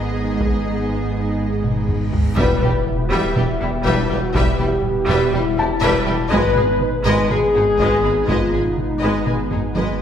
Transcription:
Already playing: sub bass G#1, cello section G#2, analog synth pad G#3 B3 D#4 G#4, french horn section B3 G#4, viola section B3, felt piano F#4 A#4 F#5 A#5, violin section G#4 D#5
0.41 taiko, reverse cymbal
1.64 taiko mid
1.89 taiko low-mid
2.13 taiko low
2.37 tuba E1, double bass section E1, sub bass E1, cello section E2, analog synth pad G3 B3 E4 B4, viola section G3, violin section B4 E5, french horn section B4, taiko, sub drop
2.62 tuba E1, double bass section E1, cello section E2, viola section G3, violin section G4 B4, taiko mid
2.87 french horn section E4, taiko mid
3.05 french horn section F#4
3.11 tuba E1, double bass section E1, cello section E2, viola section G3, felt piano G4 G5, violin section B4 E5
3.21 french horn section G4
3.36 tuba E1, double bass section E1, cello section E2, viola section G3, french horn section E4, violin section G4 B4, taiko mid
3.61 double bass section E1, tuba E1, cello section E2, viola section G3, violin section E4 G4
3.85 tuba E1, double bass section E1, cello section E2, viola section G3, french horn section D4, violin section B4 E5, taiko
4.05 french horn section E4
4.10 double bass section E1, tuba E1, cello section E2, viola section G3, violin section G4 B4
4.21 french horn section F#4
4.34 double bass section E1, tuba E1, cello section E2, viola section G3, french horn section G4, violin section B4 E5, taiko
4.59 double bass section E1, tuba E1, cello section E2, viola section G3, violin section G4 B4, taiko mid
4.84 french horn section G4, taiko mid
5.08 double bass section E1, tuba E1, cello section E2, viola section G3, violin section B4 E5
5.33 double bass section E1, tuba E1, cello section E2, viola section G3, french horn section E4, violin section G4 B4, taiko mid
5.58 double bass section E1, tuba E1, cello section E2, viola section G3, violin section E4 G4, felt piano A5
5.82 double bass section E1, tuba E1, cello section E2, viola section G3, violin section B4 E5, taiko
6.06 double bass section E1, tuba E1, cello section E2, viola section G3, violin section G4 B4
6.31 double bass section G#1, sub bass G#1, tuba G#1, cello section G#2, analog synth pad G#3 B3 D#4 B4, viola section G#3, french horn section B4, violin section B4 D#5, taiko
6.56 double bass section G#1, tuba G#1, cello section G#2, viola section G#3, violin section G#4 B4, taiko mid
6.80 french horn section B4, taiko mid
6.98 french horn section B4
7.05 double bass section G#1, tuba G#1, cello section G#2, viola section G#3, violin section B4 D#5
7.14 french horn section B4
7.29 double bass section G#1, tuba G#1, cello section G#2, viola section G#3, french horn section G#4, violin section G#4 B4, taiko mid
7.54 double bass section G#1, tuba G#1, cello section G#2, viola section G#3, violin section D#4 G#4
7.79 double bass section G#1, tuba G#1, cello section G#2, viola section G#3, violin section B4 D#5, taiko
8.03 double bass section G#1, tuba G#1, cello section G#2, viola section G#3, violin section G#4 B4
8.28 double bass section G#1, tuba G#1, cello section G#2, viola section G#3, french horn section F4, violin section B4 D#5, taiko
8.53 double bass section G#1, tuba G#1, cello section G#2, viola section G#3, violin section G#4 B4, taiko mid
8.77 french horn section D#4, taiko mid
9.01 double bass section G#1, tuba G#1, cello section G#2, viola section G#3, violin section B4 D#5
9.26 double bass section G#1, tuba G#1, cello section G#2, viola section G#3, violin section G#4 B4, taiko mid
9.51 double bass section G#1, tuba G#1, cello section G#2, viola section G#3, violin section D#4 G#4, taiko low-mid
9.75 double bass section G#1, tuba G#1, cello section G#2, viola section G#3, violin section B4 D#5, taiko high

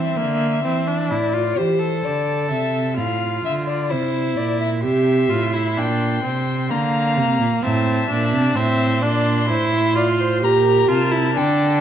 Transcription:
Already playing: cello E3, viola C4, violin E5
0.17 cello D3, viola A#3
0.64 cello E3, viola C4
0.88 viola D4
1.11 cello A2, viola E4, violin D5
1.34 viola F4
1.57 cello E3, viola G4, violin C5
1.80 viola A4
2.05 cello D3, violin D5
2.50 cello C3, violin E5
2.97 cello A2, viola F4, violin F5
3.45 cello D3, violin E5
3.67 violin D5
3.91 cello C3, viola E4, violin C5
4.37 cello A#2, violin D5
4.61 violin E5
4.84 cello C3, viola G4, violin E5 C6
5.30 cello A2, viola F4
5.54 viola E4
5.78 cello A#2, viola D4, violin G5
6.24 cello C3, viola C4
6.70 cello D3, viola A#3, violin F5 A#5
7.17 cello C3
7.40 cello A#2
7.63 cello A2, viola C4, violin E5 A5
8.10 cello A#2, viola D4
8.33 cello C3
8.56 cello A2, viola C4, violin E5 C6
9.03 cello A#2, viola D4, violin D5
9.49 cello A2, viola E4, violin C5
9.73 violin E5
9.96 viola F4, violin D5
10.20 violin C5
10.43 cello A#2, viola G4, violin A#4 A#5
10.89 cello C3, viola F4, violin A5
11.12 viola E4
11.35 cello D3, viola D4, violin A4 G5

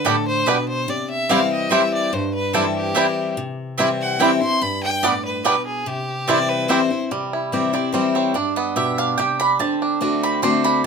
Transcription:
Already playing: steel-string acoustic guitar D3
0.05 steel-string acoustic guitar A2, five-string banjo G3 B3 D4, mandolin B3 G4 D5 G5, fiddle A4
0.28 fiddle C5
0.46 steel-string acoustic guitar B2, five-string banjo G3 B3 D4, mandolin B3 G4 D5 G5, fiddle B4
0.69 fiddle C5
0.88 steel-string acoustic guitar C3, fiddle D5
1.10 fiddle E5
1.29 steel-string acoustic guitar E3 G3 C4 E4, five-string banjo G3 C4 E4, mandolin C4 E4 C5 G5, fiddle F5
1.52 fiddle D#5
1.69 steel-string acoustic guitar E3 G3 C4 E4, five-string banjo G3 C4 E4, mandolin C4 E4 C5 G5, fiddle E5
1.94 fiddle D5
2.13 steel-string acoustic guitar G2, fiddle C5
2.35 fiddle B4
2.53 steel-string acoustic guitar E3 G3 C4 E4, five-string banjo G3 C4 E4, mandolin C4 E4 C5 G5, fiddle A4
2.76 fiddle G4
2.95 steel-string acoustic guitar E3 G3 C4 E4, five-string banjo G3 C4 E4, mandolin C4 E4 C5 G5
3.37 steel-string acoustic guitar C3
3.78 steel-string acoustic guitar E3 G3 C4 E4, five-string banjo G3 C4 E4, mandolin C4 E4 C5 G5
4.01 fiddle F#5
4.19 steel-string acoustic guitar E3 G3 C4 E4, five-string banjo G3 C4 E4, mandolin C4 E4 C5 G5, fiddle G5
4.41 steel-string acoustic guitar C4 E4, fiddle C6
4.61 steel-string acoustic guitar G2, fiddle B5
4.83 fiddle G5
5.03 steel-string acoustic guitar A2, five-string banjo G3 B3 D4, mandolin B3 G4 D5 G5, fiddle D5
5.25 fiddle B4
5.45 steel-string acoustic guitar B2, five-string banjo G3 B3 D4, mandolin B3 G4 D5 G5, fiddle B4
5.66 fiddle G#4
5.86 steel-string acoustic guitar C3, fiddle G4
6.27 steel-string acoustic guitar E3 G3 C4 E4, five-string banjo G3 C4 E4, mandolin C4 E4 C5 G5, fiddle D5
6.49 fiddle B4
6.68 steel-string acoustic guitar E3 G3 C4 E4, five-string banjo G3 C4 E4, mandolin C4 E4 C5 G5, fiddle C5
6.90 steel-string acoustic guitar C4 E4
7.11 steel-string acoustic guitar C3, five-string banjo G3
7.33 five-string banjo E4
7.52 steel-string acoustic guitar E3 G3 C4 E4, five-string banjo G4
7.73 five-string banjo C4, steel-string acoustic guitar C4 E4, mandolin D5
7.92 steel-string acoustic guitar E3 G3 C4 E4, five-string banjo G3, mandolin C5
8.15 five-string banjo C4, mandolin C#5
8.34 steel-string acoustic guitar G2, five-string banjo D4, mandolin D5
8.56 five-string banjo B3, mandolin D#5
8.76 steel-string acoustic guitar B2, five-string banjo G4, mandolin E5
8.98 five-string banjo D4, mandolin F5
9.18 steel-string acoustic guitar C3, five-string banjo G4, mandolin G5
9.40 five-string banjo D4, mandolin B5
9.59 steel-string acoustic guitar D3, five-string banjo C4, mandolin A5
9.82 five-string banjo D4
10.01 steel-string acoustic guitar D3 A3 C4 F#4, five-string banjo D4
10.23 five-string banjo C4, mandolin B5
10.42 steel-string acoustic guitar D3 A3 C4 F#4, five-string banjo D4, mandolin C6
10.64 five-string banjo D4, mandolin B5

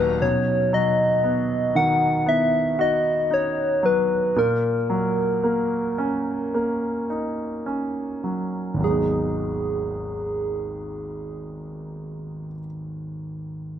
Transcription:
Already playing: grand piano D#1 D#2 A#2 F#3 D#4, string section A#2 D#3 D#4 A#5, clean electric guitar F#3 D#4, soft synth lead B4
0.22 grand piano B2, soft synth lead C#5
0.73 grand piano F#3, soft synth lead D#5
1.23 grand piano B3
1.75 grand piano D#3, soft synth lead F#5
2.26 grand piano B3, soft synth lead E5
2.79 grand piano F#4, soft synth lead D#5
3.31 grand piano D#4, soft synth lead C#5
3.83 grand piano F#3, soft synth lead B4
4.36 grand piano A#2, soft synth lead A#4
4.90 grand piano F#3
5.44 grand piano A#3
5.98 grand piano C#4
6.54 grand piano A#3
7.10 grand piano D#4
7.66 grand piano C#4
8.24 grand piano F#3
8.74 grand piano G#1 D#2
8.81 grand piano F#3 G#3, soft synth lead G#4
8.87 grand piano B3 D#4

